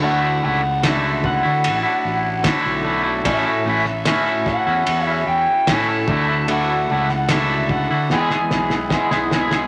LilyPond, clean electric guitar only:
\new Staff \with { instrumentName = "Clean electric guitar" } { \time 4/4 \key d \lydian \tempo 4 = 74 <d a d' e' fis'>16 <d' e' fis'>16 <a d' e' fis'>8 <d a d' e' fis'>16 <d' e' fis'>8 <d' e' fis'>8 <d' e' fis'>8. <d a d' e' fis'>16 <d' e' fis'>16 <a d' e' fis'>16 <d' e' fis'>16 | <a, a cis' e' fis'>16 <cis' e' fis'>16 <a cis' e' fis'>8 <a, a cis' e' fis'>16 <cis' e' fis'>8 <cis' e' fis'>8 <cis' e' fis'>8. <a, a cis' e' fis'>16 <cis' e' fis'>16 <d a d' e' fis'>16 <d' e' fis'>16 | <d a d' e' fis'>16 <d' e' fis'>16 <a d' e' fis'>8 <d a d' e' fis'>16 <d' e' fis'>8 <d' e' fis'>16 <e, e gis b e' gis'>16 <gis b e' gis'>8. <e, e gis b e' gis'>16 <gis b e' gis'>16 <gis b e' gis'>16 <gis b e' gis'>16 | }